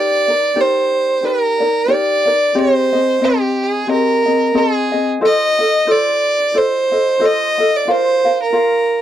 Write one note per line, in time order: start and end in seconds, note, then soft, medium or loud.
0.00 0.29 D#4 medium
0.00 0.28 G4 medium
0.00 0.28 A#4 medium
0.00 0.27 D5 medium
0.00 0.62 D5 loud
0.28 0.55 D#4 soft
0.28 0.56 A#4 medium
0.28 0.56 D5 medium
0.56 1.23 D#4 medium
0.56 1.22 G4 medium
0.56 1.23 A#4 medium
0.56 1.23 D5 medium
0.60 1.28 C5 loud
1.22 1.61 D#4 medium
1.22 1.61 G4 medium
1.22 1.60 A#4 medium
1.22 1.59 D5 medium
1.26 1.94 A#4 loud
1.60 1.87 D#4 soft
1.60 1.87 A#4 medium
1.60 1.88 D5 medium
1.88 2.27 D#4 medium
1.88 2.27 G4 medium
1.88 2.25 A#4 medium
1.88 2.25 D5 medium
1.93 2.60 D5 loud
2.26 2.55 D#4 soft
2.26 2.55 A#4 medium
2.26 2.55 D5 medium
2.55 2.93 C4 medium
2.55 2.94 G4 medium
2.55 2.92 G#4 medium
2.55 3.26 C5 loud
2.55 2.91 D#5 medium
2.93 3.20 C4 soft
2.93 3.22 G#4 medium
2.93 3.21 D#5 medium
3.22 3.87 C4 medium
3.22 3.64 G4 medium
3.22 3.89 D#5 medium
3.63 3.90 G#4 medium
3.87 4.27 C4 medium
3.87 4.26 G4 medium
3.87 4.25 G#4 medium
3.87 4.25 D#5 medium
3.91 4.60 A#4 loud
4.26 4.53 C4 soft
4.26 4.54 G#4 soft
4.26 4.54 D#5 medium
4.54 4.93 C4 medium
4.54 4.92 G#4 medium
4.54 5.09 G#4 loud
4.54 4.91 D#5 medium
4.92 5.21 C4 medium
4.92 5.22 G#4 medium
4.92 5.21 D#5 medium
5.21 5.60 F4 medium
5.21 5.59 A4 medium
5.21 5.59 C5 medium
5.21 5.58 D#5 medium
5.25 5.92 D#5 loud
5.59 5.86 F4 soft
5.59 5.87 A4 medium
5.59 5.88 D#5 medium
5.87 6.54 F4 medium
5.87 6.54 A4 medium
5.87 6.53 C5 medium
5.91 6.59 D5 loud
6.54 6.92 F4 medium
6.54 6.91 A4 medium
6.54 6.92 C5 medium
6.54 7.27 C5 loud
6.54 6.91 D#5 medium
6.92 7.19 F4 soft
6.92 7.20 A4 soft
6.92 7.20 D#5 medium
7.19 7.59 F4 medium
7.19 7.58 A4 loud
7.19 7.58 C5 medium
7.19 7.57 D#5 medium
7.25 7.78 D#5 loud
7.58 7.87 F4 medium
7.58 7.88 A4 medium
7.58 7.87 D#5 medium
7.76 7.92 D5 loud
7.87 8.25 F4 medium
7.87 8.24 A#4 medium
7.87 8.41 C5 loud
7.87 8.26 D5 medium
7.87 8.24 F5 medium
8.25 8.52 F4 soft
8.25 8.52 A#4 medium
8.25 8.52 F5 medium
8.42 9.02 A#4 loud
8.52 9.02 F4 medium
8.52 9.02 A#4 medium
8.52 9.02 D5 medium
8.52 9.02 F5 medium